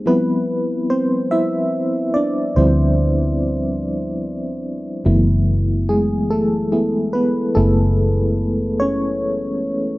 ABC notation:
X:1
M:6/8
L:1/8
Q:3/8=48
K:Dm
V:1 name="FM electric piano"
[=B,=B]2 [Cc] [Ee]2 [Dd] | [Cc]4- [Cc] z | [E,E]2 [^G,^G] [A,A]2 [=B,=B] | [A,A]3 [^C^c]3 |]
V:2 name="FM electric piano"
[F,G,CE]6 | [F,G,CE]6 | [^F,A,=B,E]4 [A,B,E^G] z | [A,=B,E^G]3 z3 |]
V:3 name="Fingered electric bass" clef=bass
D,,6 | D,,6 | ^F,,,6 | ^F,,,6 |]